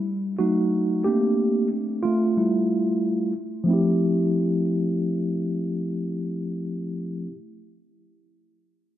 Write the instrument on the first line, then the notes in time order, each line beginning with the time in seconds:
tine electric piano
Already playing: G3
0.39 F#3 A3 D#4 F#4
1.04 A3 A#3 C4 D4 G4
2.03 A3 F4
2.37 G3 A3 E4
3.64 F3 A3
3.68 C4 E4
3.73 G4